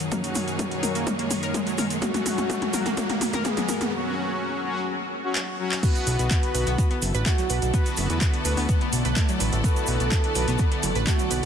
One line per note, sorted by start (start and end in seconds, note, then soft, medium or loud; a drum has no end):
0.00 3.89 F#2 medium
0.00 3.93 B2 medium
0.00 3.89 D#3 medium
0.00 3.93 F#3 medium
0.00 3.89 A#3 medium
0.00 3.93 D#4 medium
0.00 3.93 G#4 medium
0.00 0.26 A#4 loud
0.00 3.93 C#5 medium
0.00 3.93 F#5 medium
0.00 closed hi-hat soft
0.00 riser medium
0.00 shaker soft
0.12 0.80 F#3 medium
0.12 0.21 A#3 medium
0.12 0.80 C#4 medium
0.12 0.80 F#4 medium
0.12 kick loud
0.12 closed hi-hat medium
0.12 mid tom medium
0.12 shaker soft
0.24 closed hi-hat soft
0.24 shaker soft
0.35 open hi-hat loud
0.35 mid tom medium
0.35 shaker medium
0.48 closed hi-hat soft
0.48 shaker soft
0.59 kick loud
0.59 closed hi-hat medium
0.59 mid tom medium
0.59 shaker soft
0.71 closed hi-hat soft
0.83 0.98 F#3 loud
0.83 0.98 C#4 medium
0.83 0.98 F#4 loud
0.83 0.92 A#4 medium
0.83 open hi-hat medium
0.83 mid tom medium
0.83 shaker medium
0.95 1.06 A#3 loud
0.95 closed hi-hat soft
0.95 shaker soft
1.07 1.16 A#3 medium
1.07 kick loud
1.07 closed hi-hat medium
1.07 mid tom medium
1.07 shaker soft
1.19 1.28 A#3 medium
1.19 closed hi-hat soft
1.31 open hi-hat loud
1.31 mid tom medium
1.31 shaker medium
1.43 1.52 A#4 loud
1.43 closed hi-hat soft
1.43 shaker soft
1.54 1.66 G#3 medium
1.54 kick loud
1.54 closed hi-hat medium
1.54 mid tom medium
1.54 shaker soft
1.67 1.78 F#3 medium
1.67 closed hi-hat soft
1.67 shaker soft
1.78 1.88 A#4 medium
1.78 open hi-hat medium
1.78 mid tom medium
1.78 shaker medium
1.90 closed hi-hat soft
1.90 shaker soft
2.02 2.71 F#3 medium
2.02 2.12 A#3 medium
2.02 2.71 C#4 medium
2.02 2.71 F#4 medium
2.02 3.36 F#4 loud
2.02 kick loud
2.02 closed hi-hat medium
2.02 mid tom medium
2.02 shaker soft
2.14 closed hi-hat soft
2.14 mid tom medium
2.14 shaker soft
2.26 open hi-hat loud
2.26 mid tom medium
2.26 shaker medium
2.38 closed hi-hat soft
2.38 mid tom medium
2.38 shaker soft
2.50 kick loud
2.50 closed hi-hat medium
2.50 mid tom medium
2.50 shaker soft
2.62 closed hi-hat soft
2.62 mid tom medium
2.73 2.88 F#3 loud
2.73 2.88 C#4 medium
2.73 2.88 F#4 loud
2.73 2.83 A#4 medium
2.73 open hi-hat medium
2.73 mid tom medium
2.73 shaker medium
2.86 2.96 A#3 loud
2.86 closed hi-hat soft
2.86 mid tom medium
2.86 shaker soft
2.97 3.07 A#3 medium
2.97 kick loud
2.97 closed hi-hat medium
2.97 mid tom loud
2.97 shaker soft
3.10 3.18 A#3 medium
3.10 closed hi-hat soft
3.10 mid tom medium
3.21 open hi-hat loud
3.21 mid tom loud
3.21 shaker medium
3.33 3.42 A#4 loud
3.33 closed hi-hat soft
3.33 mid tom medium
3.33 shaker soft
3.45 3.57 G#3 medium
3.45 3.93 G#4 loud
3.45 kick loud
3.45 closed hi-hat medium
3.45 mid tom loud
3.45 shaker soft
3.57 3.68 F#3 medium
3.57 closed hi-hat soft
3.57 mid tom medium
3.57 shaker soft
3.69 3.78 A#4 medium
3.69 open hi-hat medium
3.69 mid tom loud
3.69 shaker medium
3.81 closed hi-hat soft
3.81 mid tom medium
3.81 shaker soft
3.93 4.61 F#3 medium
3.93 4.61 C#4 medium
3.93 4.61 F#4 medium
4.64 4.79 F#3 loud
4.64 4.79 C#4 medium
4.64 4.79 F#4 loud
5.24 5.33 F#3 loud
5.24 5.33 C#4 medium
5.24 5.33 F#4 loud
5.35 clap loud
5.59 5.80 F#3 loud
5.59 5.80 C#4 medium
5.59 5.80 F#4 loud
5.72 clap medium
5.83 11.45 D3 medium
5.83 11.45 A3 medium
5.83 11.45 B3 medium
5.83 6.52 B3 medium
5.83 5.92 B3 medium
5.83 11.45 E4 medium
5.83 7.17 F#4 loud
5.83 6.52 F#4 medium
5.83 6.52 B4 medium
5.83 kick loud
5.83 closed hi-hat medium
5.83 crash loud
5.83 shaker medium
5.95 11.45 A4 medium
5.95 closed hi-hat soft
5.95 shaker soft
6.07 6.17 B1 loud
6.07 open hi-hat loud
6.07 shaker loud
6.19 6.29 B1 medium
6.19 closed hi-hat soft
6.19 shaker soft
6.31 kick loud
6.31 clap loud
6.31 closed hi-hat medium
6.31 shaker soft
6.43 closed hi-hat soft
6.55 6.65 B1 medium
6.55 6.69 B3 medium
6.55 6.69 F#4 medium
6.55 6.64 B4 medium
6.55 6.69 B4 loud
6.55 open hi-hat loud
6.55 shaker medium
6.66 6.76 B1 medium
6.66 6.77 B3 loud
6.66 closed hi-hat soft
6.66 shaker soft
6.78 6.88 B3 medium
6.78 kick loud
6.78 closed hi-hat medium
6.78 shaker medium
6.91 6.99 B3 medium
6.91 closed hi-hat soft
7.02 7.12 F#1 medium
7.02 open hi-hat loud
7.02 shaker medium
7.12 7.24 A1 medium
7.12 7.23 B4 loud
7.12 11.45 D5 medium
7.12 11.45 F#5 medium
7.12 closed hi-hat soft
7.12 shaker soft
7.26 7.38 A3 medium
7.26 7.88 F#4 loud
7.26 kick loud
7.26 clap loud
7.26 closed hi-hat medium
7.26 shaker medium
7.38 7.49 F#3 medium
7.38 closed hi-hat soft
7.38 shaker soft
7.50 7.60 B1 medium
7.50 7.59 B4 medium
7.50 open hi-hat loud
7.50 shaker loud
7.62 7.72 B1 medium
7.62 closed hi-hat soft
7.62 shaker soft
7.74 7.83 B3 medium
7.74 8.42 B3 medium
7.74 8.42 F#4 medium
7.74 8.42 B4 medium
7.74 kick loud
7.74 closed hi-hat medium
7.74 shaker soft
7.86 closed hi-hat soft
7.86 shaker soft
7.97 8.08 F#1 loud
7.97 open hi-hat loud
7.97 shaker medium
8.10 8.19 E2 medium
8.10 closed hi-hat soft
8.10 shaker soft
8.21 kick loud
8.21 clap loud
8.21 closed hi-hat medium
8.21 shaker medium
8.34 closed hi-hat soft
8.45 8.55 D2 medium
8.45 8.60 B3 medium
8.45 8.60 F#4 medium
8.45 8.54 B4 medium
8.45 8.60 B4 loud
8.45 open hi-hat loud
8.45 shaker loud
8.56 8.67 D2 medium
8.56 8.68 B3 loud
8.56 open hi-hat medium
8.56 shaker soft
8.69 8.78 B3 medium
8.69 kick loud
8.69 closed hi-hat medium
8.69 shaker medium
8.81 8.90 B3 medium
8.81 closed hi-hat soft
8.93 9.03 B1 medium
8.93 open hi-hat loud
8.93 shaker medium
9.05 9.14 B1 medium
9.05 9.14 B4 loud
9.05 closed hi-hat soft
9.05 shaker soft
9.16 9.28 A3 medium
9.16 kick loud
9.16 clap loud
9.16 closed hi-hat medium
9.16 shaker medium
9.29 9.40 F#3 medium
9.29 closed hi-hat soft
9.29 shaker soft
9.40 9.50 A1 medium
9.40 9.50 B4 medium
9.40 open hi-hat loud
9.40 shaker medium
9.52 9.62 A1 medium
9.52 closed hi-hat soft
9.52 shaker soft
9.64 10.33 B3 medium
9.64 9.73 B3 medium
9.64 10.33 F#4 medium
9.64 10.98 A4 loud
9.64 10.33 B4 medium
9.64 kick loud
9.64 closed hi-hat medium
9.64 shaker medium
9.76 closed hi-hat soft
9.76 shaker soft
9.87 9.98 B1 medium
9.87 open hi-hat loud
9.87 shaker loud
10.00 10.10 B1 medium
10.00 closed hi-hat soft
10.00 shaker soft
10.11 kick loud
10.11 clap loud
10.11 closed hi-hat medium
10.11 shaker medium
10.24 closed hi-hat soft
10.35 10.46 B1 medium
10.35 10.50 B3 loud
10.35 10.50 F#4 medium
10.35 10.45 B4 medium
10.35 10.50 B4 loud
10.35 open hi-hat loud
10.35 shaker medium
10.48 10.57 B1 medium
10.48 10.58 B3 loud
10.48 closed hi-hat soft
10.48 shaker soft
10.58 10.69 B3 medium
10.58 kick loud
10.58 closed hi-hat medium
10.58 shaker medium
10.72 10.80 B3 medium
10.72 closed hi-hat soft
10.83 10.93 F#1 loud
10.83 open hi-hat loud
10.83 shaker loud
10.95 11.05 A1 medium
10.95 11.04 B4 loud
10.95 closed hi-hat soft
10.95 shaker soft
11.07 11.19 A3 medium
11.07 11.45 F#4 loud
11.07 kick loud
11.07 clap loud
11.07 closed hi-hat medium
11.07 shaker medium
11.19 11.30 F#3 medium
11.19 closed hi-hat soft
11.19 shaker soft
11.31 11.41 B1 loud
11.31 11.40 B4 medium
11.31 open hi-hat loud
11.31 shaker loud